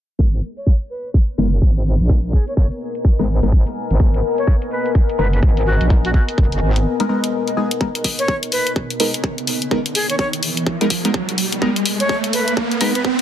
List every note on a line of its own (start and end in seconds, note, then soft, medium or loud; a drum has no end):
0.19 0.41 G#1 medium
0.19 0.26 G#3 medium
0.19 0.26 B3 medium
0.19 13.22 B3 medium
0.19 0.26 D#4 medium
0.19 0.26 A#4 medium
0.19 kick loud
0.33 closed hi-hat soft
0.39 13.22 A#4 medium
0.57 0.73 C#5 medium
0.57 closed hi-hat medium
0.67 kick loud
0.73 13.22 D#5 medium
0.81 closed hi-hat soft
0.89 1.09 B4 medium
0.89 13.22 G#5 medium
1.05 closed hi-hat medium
1.14 kick loud
1.29 closed hi-hat soft
1.38 1.60 F#1 medium
1.38 1.50 G#3 medium
1.38 1.50 B3 medium
1.38 1.50 D#4 medium
1.38 1.50 A#4 loud
1.52 closed hi-hat medium
1.62 1.98 G#1 medium
1.62 kick loud
1.76 closed hi-hat soft
2.00 2.32 A#1 medium
2.00 closed hi-hat medium
2.09 2.17 G#3 medium
2.09 2.17 B3 medium
2.09 2.17 D#4 medium
2.09 2.17 A#4 loud
2.09 kick loud
2.24 closed hi-hat soft
2.33 2.45 G#4 medium
2.33 kick medium
2.48 2.54 C#5 medium
2.48 closed hi-hat medium
2.57 2.69 F#1 medium
2.57 2.66 C#5 medium
2.57 kick loud
2.71 closed hi-hat soft
2.95 closed hi-hat medium
3.05 kick loud
3.19 3.41 G#1 medium
3.19 3.24 G#3 medium
3.19 3.24 B3 medium
3.19 3.24 D#4 medium
3.19 3.24 A#4 medium
3.19 closed hi-hat soft
3.43 3.64 G#1 medium
3.43 3.48 G#3 medium
3.43 3.48 B3 medium
3.43 3.48 D#4 medium
3.43 3.48 A#4 medium
3.43 closed hi-hat medium
3.52 kick loud
3.67 closed hi-hat soft
3.91 3.98 G#1 medium
3.91 closed hi-hat medium
4.00 4.22 G#1 loud
4.00 4.07 G#3 medium
4.00 4.07 B3 medium
4.00 4.07 D#4 medium
4.00 4.07 A#4 medium
4.00 kick loud
4.14 closed hi-hat soft
4.38 4.54 C#5 medium
4.38 closed hi-hat medium
4.47 kick loud
4.62 closed hi-hat soft
4.71 4.90 B4 medium
4.86 closed hi-hat medium
4.95 kick loud
5.10 closed hi-hat soft
5.19 5.41 F#1 medium
5.19 5.31 G#3 medium
5.19 5.31 B3 medium
5.19 5.31 D#4 medium
5.19 5.31 A#4 loud
5.19 5.28 B4 medium
5.33 5.39 B4 medium
5.33 closed hi-hat medium
5.43 5.79 G#1 medium
5.43 kick loud
5.57 closed hi-hat soft
5.66 5.85 F#4 medium
5.81 6.13 A#1 medium
5.81 closed hi-hat medium
5.90 5.98 G#3 medium
5.90 5.98 B3 medium
5.90 5.98 D#4 medium
5.90 5.98 A#4 loud
5.90 kick loud
6.05 6.11 F#4 medium
6.05 closed hi-hat soft
6.14 6.23 F#4 medium
6.14 kick medium
6.29 closed hi-hat medium
6.38 6.50 F#1 medium
6.38 kick loud
6.52 6.60 F#1 medium
6.52 closed hi-hat soft
6.62 6.85 G#1 loud
6.76 closed hi-hat medium
7.00 7.05 G#3 medium
7.00 7.05 B3 medium
7.00 7.05 D#4 medium
7.00 7.05 A#4 loud
7.00 closed hi-hat soft
7.09 7.55 G#3 medium
7.09 7.55 B3 medium
7.09 7.55 D#4 medium
7.09 7.55 A#4 medium
7.24 closed hi-hat medium
7.48 closed hi-hat soft
7.57 7.69 G#3 medium
7.57 7.69 B3 medium
7.57 7.69 D#4 medium
7.57 7.69 G#4 medium
7.71 closed hi-hat medium
7.81 7.88 G#3 medium
7.81 7.88 B3 medium
7.81 7.88 D#4 medium
7.81 7.88 A#4 medium
7.81 kick loud
7.81 riser medium
7.95 closed hi-hat medium
8.04 kick medium
8.04 open hi-hat loud
8.19 8.35 C#5 medium
8.19 closed hi-hat medium
8.28 kick loud
8.43 closed hi-hat soft
8.52 8.71 B4 medium
8.52 open hi-hat medium
8.67 closed hi-hat medium
8.76 kick loud
8.90 closed hi-hat soft
9.00 9.12 G#3 medium
9.00 9.12 B3 medium
9.00 9.12 D#4 medium
9.00 9.12 A#4 loud
9.00 open hi-hat loud
9.14 closed hi-hat medium
9.24 kick loud
9.38 closed hi-hat soft
9.47 open hi-hat medium
9.62 closed hi-hat medium
9.71 9.79 G#3 medium
9.71 9.79 B3 medium
9.71 9.79 D#4 medium
9.71 9.79 A#4 loud
9.71 kick loud
9.86 closed hi-hat medium
9.95 10.07 G#4 medium
9.95 open hi-hat loud
10.10 10.15 C#5 medium
10.10 closed hi-hat medium
10.19 10.28 C#5 medium
10.19 kick loud
10.33 closed hi-hat medium
10.43 open hi-hat medium
10.57 closed hi-hat medium
10.67 kick loud
10.81 10.86 G#3 medium
10.81 10.86 B3 medium
10.81 10.86 D#4 medium
10.81 10.86 A#4 loud
10.81 closed hi-hat soft
10.90 kick medium
10.90 open hi-hat loud
11.05 11.10 G#3 medium
11.05 11.10 B3 medium
11.05 11.10 D#4 medium
11.05 11.10 A#4 medium
11.05 closed hi-hat medium
11.14 kick loud
11.29 closed hi-hat soft
11.38 open hi-hat medium
11.52 closed hi-hat medium
11.62 11.69 G#3 medium
11.62 11.69 B3 medium
11.62 11.69 D#4 medium
11.62 11.69 A#4 medium
11.62 kick loud
11.76 closed hi-hat medium
11.86 open hi-hat loud
12.00 12.16 C#5 loud
12.00 closed hi-hat medium
12.09 kick loud
12.24 closed hi-hat soft
12.33 12.52 B4 medium
12.33 open hi-hat loud
12.48 closed hi-hat medium
12.57 kick loud
12.71 closed hi-hat soft
12.81 12.93 G#3 loud
12.81 12.93 B3 medium
12.81 12.93 D#4 medium
12.81 12.93 A#4 loud
12.81 12.90 B4 medium
12.81 open hi-hat loud
12.95 13.01 B4 medium
12.95 closed hi-hat medium
13.05 kick loud